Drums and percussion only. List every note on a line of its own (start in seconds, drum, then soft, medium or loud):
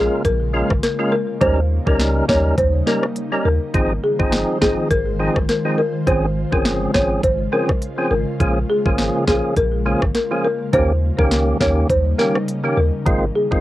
0.25 kick medium
0.25 closed hi-hat medium
0.70 kick loud
0.70 cross-stick loud
0.83 snare medium
0.83 closed hi-hat medium
1.41 kick loud
1.41 closed hi-hat medium
1.87 kick medium
1.99 snare loud
1.99 closed hi-hat medium
2.29 kick loud
2.29 snare loud
2.58 kick medium
2.58 closed hi-hat medium
2.87 snare medium
3.03 cross-stick loud
3.16 closed hi-hat medium
3.74 kick loud
3.74 closed hi-hat medium
4.20 kick medium
4.32 snare loud
4.32 closed hi-hat medium
4.62 kick loud
4.62 snare loud
4.91 kick medium
4.91 closed hi-hat medium
5.36 kick medium
5.36 cross-stick loud
5.49 snare medium
5.49 closed hi-hat medium
6.07 kick loud
6.07 closed hi-hat medium
6.53 kick medium
6.65 snare loud
6.65 closed hi-hat medium
6.95 kick loud
6.95 snare loud
7.24 kick medium
7.24 closed hi-hat medium
7.69 kick medium
7.69 cross-stick loud
7.82 closed hi-hat medium
8.40 kick loud
8.40 closed hi-hat medium
8.86 kick medium
8.98 snare loud
8.98 closed hi-hat medium
9.28 kick loud
9.28 snare loud
9.56 kick medium
9.56 closed hi-hat medium
10.02 kick loud
10.02 cross-stick loud
10.15 snare medium
10.15 closed hi-hat medium
10.73 kick loud
10.73 closed hi-hat medium
11.19 kick medium
11.31 snare loud
11.31 closed hi-hat medium
11.61 kick loud
11.61 snare loud
11.90 kick medium
11.90 closed hi-hat medium
12.19 snare medium
12.35 cross-stick loud
12.48 closed hi-hat medium
13.06 kick loud
13.06 closed hi-hat medium
13.52 kick medium